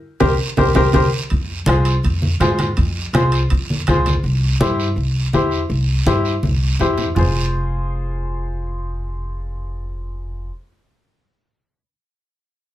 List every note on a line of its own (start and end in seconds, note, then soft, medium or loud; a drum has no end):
0.20 0.35 C2 medium
0.20 0.32 G4 medium
0.20 0.33 A#4 medium
0.20 0.32 C5 medium
0.20 bombo low medium
0.20 high conga medium
0.20 high timbale loud
0.20 long guiro medium
0.57 0.71 C2 medium
0.57 0.70 G4 medium
0.57 0.69 A#4 medium
0.57 0.70 C5 loud
0.57 bombo low loud
0.57 high conga medium
0.57 high timbale medium
0.57 long guiro loud
0.75 0.90 C2 medium
0.75 0.88 G4 loud
0.75 0.88 A#4 loud
0.75 0.88 C5 loud
0.75 bombo low medium
0.75 high conga loud
0.75 high timbale loud
0.75 long guiro medium
0.93 1.08 C2 medium
0.93 1.06 G4 medium
0.93 1.06 A#4 medium
0.93 1.06 C5 loud
0.93 bombo low medium
0.93 high conga loud
0.93 high timbale medium
0.93 long guiro medium
1.30 1.60 F2 medium
1.30 bombo low medium
1.30 high conga soft
1.30 high timbale medium
1.30 long guiro medium
1.66 1.96 C2 medium
1.66 1.93 F4 medium
1.66 1.93 G#4 medium
1.66 1.93 C5 medium
1.66 bombo rim medium
1.66 high conga medium
1.66 high timbale medium
1.66 short guiro medium
1.85 high timbale medium
1.85 short guiro medium
2.03 2.33 F2 medium
2.03 bombo low medium
2.03 high conga soft
2.03 high timbale medium
2.03 long guiro medium
2.22 high conga medium
2.40 2.69 G#2 medium
2.40 2.66 F4 medium
2.40 2.66 G#4 medium
2.40 2.66 C5 medium
2.40 bombo rim medium
2.40 high conga medium
2.40 high timbale medium
2.40 low timbale medium
2.40 short guiro medium
2.59 bombo rim medium
2.59 high conga medium
2.59 high timbale medium
2.59 short guiro medium
2.77 3.06 F2 medium
2.77 bombo low medium
2.77 high conga soft
2.77 high timbale medium
2.77 long guiro medium
3.13 3.43 C2 medium
3.13 3.39 F4 medium
3.13 3.40 G#4 medium
3.13 3.40 C5 medium
3.13 bombo rim medium
3.13 high conga medium
3.13 high timbale medium
3.13 short guiro medium
3.32 high timbale medium
3.32 short guiro medium
3.50 3.80 F2 medium
3.50 bombo low medium
3.50 high conga soft
3.50 high timbale medium
3.50 long guiro medium
3.70 high conga medium
3.87 4.17 C#2 medium
3.87 4.13 F4 medium
3.87 4.14 G#4 medium
3.87 4.14 C5 medium
3.87 bombo low medium
3.87 bombo rim medium
3.87 high conga medium
3.87 high timbale medium
3.87 short guiro medium
4.06 high conga medium
4.06 high timbale medium
4.06 short guiro medium
4.23 4.53 C2 medium
4.23 high conga soft
4.23 long guiro medium
4.60 4.90 G2 medium
4.60 4.86 E4 medium
4.60 4.86 G4 medium
4.60 4.86 C5 medium
4.60 high conga medium
4.60 short guiro medium
4.80 short guiro medium
4.96 5.26 C2 medium
4.96 high conga soft
4.96 long guiro medium
5.33 5.63 E2 medium
5.33 5.59 E4 medium
5.33 5.60 G4 medium
5.33 5.60 C5 medium
5.33 high conga medium
5.33 short guiro medium
5.51 short guiro medium
5.70 5.99 C2 medium
5.70 high conga soft
5.70 long guiro medium
6.06 6.36 G2 medium
6.06 6.32 E4 medium
6.06 6.33 G4 medium
6.06 6.33 C5 medium
6.06 high conga medium
6.06 short guiro medium
6.25 short guiro medium
6.43 6.73 C2 medium
6.43 high conga medium
6.43 long guiro medium
6.79 7.09 E2 medium
6.79 7.06 E4 medium
6.79 7.06 G4 medium
6.79 7.06 C5 medium
6.79 low conga medium
6.79 short guiro medium
6.98 low conga medium
6.98 short guiro medium
7.15 10.48 F1 medium
7.15 10.47 F4 medium
7.15 10.49 G#4 medium
7.15 10.51 C5 medium
7.15 low conga medium
7.15 long guiro medium